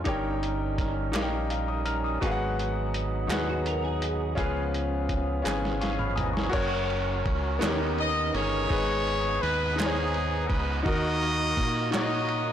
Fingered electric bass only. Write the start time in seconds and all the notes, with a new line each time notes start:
0.06 G1
1.14 A#1
2.22 G#1
3.28 D#2
4.37 C#2
5.46 G#1
6.53 F#1
7.25 C#2
7.62 D#2
8.34 G1
8.71 G#1
9.43 D#2
10.50 C#2
10.86 D#2
11.57 A#2